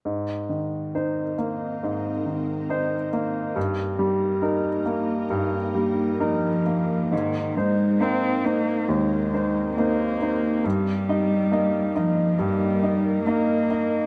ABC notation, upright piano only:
X:1
M:4/4
L:1/8
Q:1/4=68
K:Ablyd
V:1 name="Upright piano"
A,, E, [Ec] B, A,, E, [Ec] B, | G,, G, [EB] B, G,, G, [EB] B, | A,, [Ec] [B,Ec] [Ec] E,, [Ec] [B,Ec] [Ec] | G,, [Ee] [B,Ee] [Ee] G,, [Ee] [B,Ee] [Ee] |]